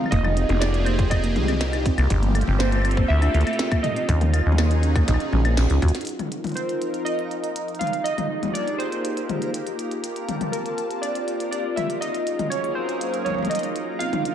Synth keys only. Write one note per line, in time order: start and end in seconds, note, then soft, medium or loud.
0.00 0.14 F5 loud
0.11 0.63 D#5 loud
0.60 0.87 D5 loud
0.85 1.11 C5 medium
1.10 1.81 D#5 medium
2.59 3.10 C5 medium
3.08 3.86 E5 loud
3.83 5.53 D#5 loud
6.55 7.02 C5 medium
7.05 7.82 D#5 medium
7.79 8.05 F5 medium
8.04 8.56 D#5 loud
8.53 8.80 D5 medium
8.78 9.49 C5 medium
10.52 11.04 A#4 medium
11.02 11.50 D5 medium
11.51 11.77 D5 medium
11.76 11.88 E5 medium
12.01 12.48 D#5 medium
12.50 12.74 C#5 medium
12.75 13.27 C5 medium
13.25 13.51 C#5 medium
13.50 14.01 D#5 medium
13.99 14.35 F5 loud